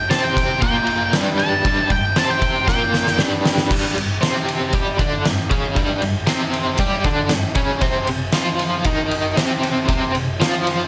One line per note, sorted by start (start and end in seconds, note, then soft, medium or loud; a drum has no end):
0.10 0.61 C3 loud
0.10 0.62 C4 loud
0.10 0.24 A5 loud
0.10 snare loud
0.10 ride loud
0.24 0.61 G5 loud
0.37 kick medium
0.37 ride medium
0.62 1.13 A#2 loud
0.62 1.14 A#3 loud
0.62 1.12 G5 loud
0.62 kick loud
0.62 ride loud
0.87 ride medium
1.13 1.65 G2 loud
1.13 1.65 G3 loud
1.13 snare loud
1.13 ride loud
1.38 1.88 A5 loud
1.38 ride medium
1.65 1.90 G2 medium
1.65 1.91 G3 loud
1.65 kick loud
1.65 ride loud
1.90 2.11 G2 medium
1.90 2.16 G5 medium
1.90 kick medium
1.90 ride medium
2.16 2.67 C3 loud
2.16 2.68 C4 loud
2.16 2.30 A5 loud
2.16 snare loud
2.16 ride loud
2.30 2.67 G5 loud
2.42 kick medium
2.42 ride medium
2.68 3.19 A#2 medium
2.68 3.19 A#3 loud
2.68 3.18 G5 loud
2.68 kick loud
2.68 snare medium
2.94 snare medium
3.07 snare medium
3.18 3.69 G2 loud
3.18 3.70 G3 loud
3.18 snare loud
3.46 snare loud
3.58 snare medium
3.71 3.95 G2 medium
3.71 3.96 G3 loud
3.71 kick loud
3.71 crash loud
3.96 4.17 G2 medium
3.96 ride medium
4.21 4.72 C3 loud
4.21 4.73 C4 loud
4.21 snare loud
4.21 ride loud
4.48 ride medium
4.73 4.98 G3 loud
4.73 4.99 G4 loud
4.73 kick loud
4.73 ride loud
4.98 5.23 D3 loud
4.98 5.24 D4 loud
4.98 kick loud
4.98 ride medium
5.25 5.46 G2 medium
5.25 snare loud
5.25 ride loud
5.50 5.75 C#3 medium
5.50 5.76 C#4 loud
5.50 kick loud
5.50 ride medium
5.74 6.00 G2 medium
5.74 6.01 G3 loud
5.74 kick loud
5.74 ride loud
6.02 6.23 G2 medium
6.02 ride medium
6.27 6.78 C3 medium
6.27 6.79 C4 loud
6.27 snare loud
6.27 ride loud
6.54 ride medium
6.77 7.04 G3 loud
6.77 7.05 G4 loud
6.77 kick loud
6.77 ride loud
7.04 7.30 D3 medium
7.04 7.31 D4 loud
7.04 kick loud
7.04 ride medium
7.29 7.51 G2 medium
7.29 snare loud
7.29 ride loud
7.55 7.81 C#3 loud
7.55 7.81 C#4 loud
7.55 kick loud
7.55 ride medium
7.81 8.07 C3 loud
7.81 8.07 C4 loud
7.81 kick loud
7.81 ride loud
8.07 8.29 C3 medium
8.07 ride medium
8.32 8.85 F3 loud
8.32 8.85 F4 loud
8.32 snare loud
8.32 ride loud
8.59 ride medium
8.84 9.36 D#3 loud
8.84 9.37 D#4 loud
8.84 kick loud
8.84 ride loud
9.11 ride medium
9.37 9.86 C3 loud
9.37 9.88 C4 loud
9.37 snare loud
9.37 ride loud
9.63 ride medium
9.88 10.12 C3 medium
9.88 10.14 C4 loud
9.88 kick loud
9.88 ride loud
10.14 10.35 C3 medium
10.14 ride medium
10.40 10.88 F3 medium
10.40 10.88 F4 loud
10.40 snare loud
10.40 ride loud
10.67 ride medium